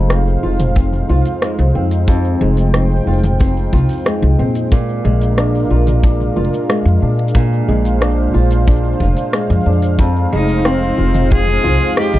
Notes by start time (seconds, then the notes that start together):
Already playing: F1 F2 G#3 D#4 C5 F5
0.10 C4, cross-stick, closed hi-hat, shaker
0.27 shaker
0.43 F1 F4
0.60 closed hi-hat, mid tom, shaker
0.76 C4, kick, closed hi-hat, shaker
0.92 mid tom, shaker
1.09 C2 F4
1.25 closed hi-hat, shaker
1.42 G#3, cross-stick, closed hi-hat, shaker
1.59 C2, shaker
1.75 F2 C4
1.91 closed hi-hat, shaker
2.08 F2 G5, kick, closed hi-hat, shaker
2.25 shaker
2.41 F1 G#3
2.57 closed hi-hat, shaker
2.74 C4, cross-stick, closed hi-hat, shaker
2.91 shaker
2.97 shaker
3.02 shaker
3.07 F1 F4, shaker
3.13 shaker
3.18 shaker
3.24 closed hi-hat, mid tom, shaker
3.40 C4, kick, closed hi-hat, shaker
3.57 shaker
3.73 C2 F4, kick
3.89 closed hi-hat, shaker
3.92 shaker
3.95 shaker
4.02 shaker
4.04 G#3, cross-stick, closed hi-hat, shaker
4.07 shaker
4.22 C2
4.39 A#2 C4
4.55 closed hi-hat, shaker
4.72 A#2 D4 A#4 F5, kick, closed hi-hat, shaker
4.89 shaker
5.04 A#1 G#3
5.22 closed hi-hat, shaker
5.38 D4, cross-stick, closed hi-hat, shaker
5.55 shaker
5.57 shaker
5.60 shaker
5.62 shaker
5.64 shaker
5.67 shaker
5.69 A#1 F4, shaker
5.87 closed hi-hat, mid tom, shaker
6.03 D4, kick, closed hi-hat, shaker
6.20 mid tom, shaker
6.36 F1 F4
6.45 closed hi-hat
6.54 shaker
6.69 G#3, cross-stick, closed hi-hat, shaker
6.86 F2, shaker
7.02 A#2 D4
7.19 closed hi-hat
7.28 shaker
7.35 A#2 C5, kick, closed hi-hat, shaker
7.53 shaker
7.68 A#1 G#3
7.85 closed hi-hat, shaker
8.01 D4, cross-stick, closed hi-hat, shaker
8.10 shaker
8.34 A#1 F4
8.51 closed hi-hat, shaker
8.67 D4, kick, closed hi-hat, shaker
8.76 shaker
8.84 shaker
8.93 shaker
9.00 F1 F4, kick
9.17 closed hi-hat, shaker
9.33 G#3, cross-stick, closed hi-hat, shaker
9.50 F2, shaker
9.61 shaker
9.66 F2 D4
9.72 shaker
9.82 closed hi-hat, shaker
9.99 F2 D#4 C5, kick, closed hi-hat, shaker
10.16 shaker
10.32 F1 G#3 D#4
10.49 closed hi-hat, shaker
10.65 C4, cross-stick, closed hi-hat, shaker
10.82 shaker
10.98 F1 F4
11.14 closed hi-hat, mid tom, shaker
11.31 C4 G#4, kick, closed hi-hat, shaker
11.48 mid tom, shaker
11.64 C2 F4
11.81 closed hi-hat, shaker
11.84 shaker
11.87 shaker
11.89 shaker
11.92 shaker
11.95 G#3, cross-stick, closed hi-hat, shaker
11.98 G4, shaker
12.14 C2, shaker